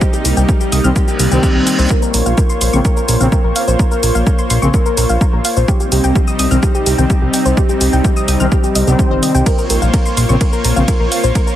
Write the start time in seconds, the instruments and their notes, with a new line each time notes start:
Already playing: analog synth pad C3 G3 D#4
0.01 analog synth pad A#3, synth arpeggio sound G4, kick, shaker
0.13 synth arpeggio sound G4, shaker
0.25 analog synth bass C2, synth arpeggio sound G4, open hi-hat, shaker
0.37 analog synth bass C2, synth arpeggio sound G5, shaker
0.49 synth arpeggio sound G4, kick, shaker
0.61 synth arpeggio sound G4, shaker
0.72 analog synth bass C2, synth arpeggio sound D#6, open hi-hat, shaker
0.84 analog synth bass C2, analog polysynth D#3 G3 C4, synth arpeggio sound F6, shaker
0.96 synth arpeggio sound G4, kick, reverse cymbal, shaker
1.08 synth arpeggio sound G4, shaker
1.19 analog synth bass C2, synth arpeggio sound G4, open hi-hat, shaker
1.31 analog synth bass C2, analog polysynth D#3 G3 C4, synth arpeggio sound G5, shaker
1.43 synth arpeggio sound G4, kick, shaker
1.55 analog synth bass C2, synth arpeggio sound G4
1.67 synth arpeggio sound G5, open hi-hat, shaker
1.79 analog synth bass C2, synth arpeggio sound C5, shaker
1.90 analog synth pad F4 C5 C#5, synth arpeggio sound A#4, kick, shaker
2.02 synth arpeggio sound A#4, shaker
2.14 analog synth bass A#1, synth arpeggio sound A#4, open hi-hat, shaker
2.26 analog synth bass A#1, synth arpeggio sound F5, shaker
2.38 synth arpeggio sound A#4, kick, shaker
2.50 synth arpeggio sound C6, shaker
2.61 analog synth bass A#1, synth arpeggio sound C6, open hi-hat, shaker
2.73 analog synth bass A#1, analog polysynth C#3 A#3 C4, synth arpeggio sound C#6, shaker
2.85 synth arpeggio sound A#4, kick, shaker
2.97 synth arpeggio sound A#4, shaker
3.08 analog synth bass A#1, synth arpeggio sound A#4, open hi-hat, shaker
3.20 analog synth bass A#1, analog polysynth C#3 A#3 C4, synth arpeggio sound F5, shaker
3.32 synth arpeggio sound A#4, kick, shaker
3.44 analog synth bass A#1, synth arpeggio sound A#4
3.56 synth arpeggio sound F5, open hi-hat, shaker
3.68 analog synth bass A#1, synth arpeggio sound C5, shaker
3.79 synth arpeggio sound A#4, kick, shaker
3.91 synth arpeggio sound A#4, shaker
4.03 analog synth bass A#1, synth arpeggio sound A#4, open hi-hat, shaker
4.15 analog synth bass A#1, synth arpeggio sound F5, shaker
4.27 synth arpeggio sound A#4, kick, shaker
4.39 synth arpeggio sound C6, shaker
4.50 analog synth bass A#1, synth arpeggio sound C6, open hi-hat, shaker
4.62 analog synth bass A#1, analog polysynth C#3 A#3 C4, synth arpeggio sound C#6, shaker
4.74 synth arpeggio sound A#4, kick, shaker
4.86 synth arpeggio sound A#4, shaker
4.97 analog synth bass A#1, synth arpeggio sound A#4, open hi-hat, shaker
5.09 analog synth bass A#1, synth arpeggio sound F5, shaker
5.21 synth arpeggio sound A#4, kick, shaker
5.33 analog synth bass A#1, synth arpeggio sound A#4
5.45 synth arpeggio sound F5, open hi-hat, shaker
5.57 analog synth bass A#1, synth arpeggio sound C5, shaker
5.68 analog synth pad C3 G3 C4 D#4, synth arpeggio sound G4, kick, shaker
5.80 synth arpeggio sound G4, shaker
5.92 analog synth bass C2, synth arpeggio sound G4, open hi-hat, shaker
6.04 analog synth bass C2, synth arpeggio sound G5, shaker
6.16 synth arpeggio sound G4, kick, shaker
6.27 synth arpeggio sound D#6, shaker
6.39 analog synth bass C2, synth arpeggio sound D#6, open hi-hat, shaker
6.51 analog synth bass C2, analog polysynth D#3 G3 C4, synth arpeggio sound F6, shaker
6.63 synth arpeggio sound G4, kick, shaker
6.75 synth arpeggio sound G4, shaker
6.86 analog synth bass C2, synth arpeggio sound G4, open hi-hat, shaker
6.98 analog synth bass C2, analog polysynth D#3 G3 C4, synth arpeggio sound G5, shaker
7.10 synth arpeggio sound G4, kick, shaker
7.22 analog synth bass C2, synth arpeggio sound G4
7.34 synth arpeggio sound G5, open hi-hat, shaker
7.46 analog synth bass C2, synth arpeggio sound C5, shaker
7.57 synth arpeggio sound G4, kick, shaker
7.69 synth arpeggio sound G4, shaker
7.81 analog synth bass C2, synth arpeggio sound G4, open hi-hat, shaker
7.93 analog synth bass C2, synth arpeggio sound G5, shaker
8.05 synth arpeggio sound G4, kick, shaker
8.16 synth arpeggio sound D#6, shaker
8.28 analog synth bass C2, synth arpeggio sound D#6, open hi-hat, shaker
8.40 analog synth bass C2, analog polysynth D#3 G3 C4, synth arpeggio sound F6, shaker
8.52 synth arpeggio sound G4, kick, shaker
8.64 synth arpeggio sound G4, shaker
8.75 analog synth bass C2, synth arpeggio sound D#5, open hi-hat, shaker
8.87 analog synth bass C2, analog polysynth D#3 G3 C4, synth arpeggio sound G4, shaker
8.99 synth arpeggio sound C5, kick, shaker
9.11 analog synth bass G1, synth arpeggio sound C5
9.23 synth arpeggio sound D#5, open hi-hat, shaker
9.35 analog synth bass C2, synth arpeggio sound G5, shaker
9.46 analog synth pad A#3 F4 C5 C#5, synth arpeggio sound A#4, kick, ride, shaker
9.58 synth arpeggio sound A#4, shaker
9.70 analog synth bass A#1, synth arpeggio sound A#4, open hi-hat, shaker
9.82 analog synth bass A#1, synth arpeggio sound F5, shaker
9.94 synth arpeggio sound A#4, kick, ride, shaker
10.06 synth arpeggio sound C6, shaker
10.17 analog synth bass A#1, synth arpeggio sound C6, open hi-hat, shaker
10.29 analog synth bass A#1, analog polysynth C#3 A#3 C4, synth arpeggio sound C#6, shaker
10.41 synth arpeggio sound A#4, kick, ride, shaker
10.53 synth arpeggio sound A#4, shaker
10.64 analog synth bass A#1, synth arpeggio sound A#4, open hi-hat, shaker
10.76 analog synth bass A#1, analog polysynth C#3 A#3 C4, synth arpeggio sound F5, shaker
10.88 synth arpeggio sound A#4, kick, ride, shaker
11.00 analog synth bass A#1, synth arpeggio sound A#4
11.12 synth arpeggio sound F5, open hi-hat, shaker
11.24 analog synth bass A#1, synth arpeggio sound C5, shaker
11.35 synth arpeggio sound A#4, kick, ride, shaker
11.47 synth arpeggio sound A#4, shaker